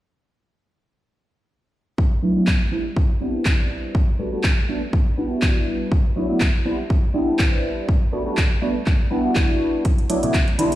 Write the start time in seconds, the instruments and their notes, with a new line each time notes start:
1.98 kick
2.22 analog polysynth F#3 A3 B3 D4 E4
2.35 analog polysynth F#3 A3 B3 D4 E4
2.47 kick, clap
2.71 analog polysynth G3 B3 C4 D4 E4
2.96 kick
3.20 analog polysynth G3 B3 C4 D4 E4
3.45 kick, clap
3.95 kick
4.19 analog polysynth G3 A3 B3 D4 F#4
4.32 analog polysynth G3 A3 B3 D4 F#4
4.43 kick, clap
4.68 analog polysynth G3 A3 B3 D4 F#4
4.93 kick
5.17 analog polysynth G3 B3 D4 E4 F#4
5.42 kick, clap
5.92 kick
6.16 analog polysynth F#3 A3 B3 D4 E4
6.29 analog polysynth F#3 A3 B3 D4 E4
6.40 kick, clap
6.65 analog polysynth G3 B3 C4 D4 E4
6.90 kick
7.14 analog polysynth G3 B3 C4 D4 E4
7.39 kick, clap
7.89 kick
8.12 analog polysynth G3 A3 B3 D4 F#4
8.26 analog polysynth G3 A3 B3 D4 F#4
8.37 kick, clap
8.62 analog polysynth G3 A3 B3 D4 F#4
8.86 kick, clap
9.11 analog polysynth G3 B3 D4 E4 F#4
9.35 kick, clap
9.85 kick, closed hi-hat
9.98 closed hi-hat
10.09 analog polysynth F#3 A3 B3 D4 E4, closed hi-hat
10.22 analog polysynth F#3 A3 B3 D4 E4, closed hi-hat, low conga, shaker
10.34 kick, clap, closed hi-hat, shaker
10.48 closed hi-hat, shaker
10.58 analog polysynth G3 B3 C4 D4 E4, closed hi-hat, high conga
10.72 closed hi-hat, shaker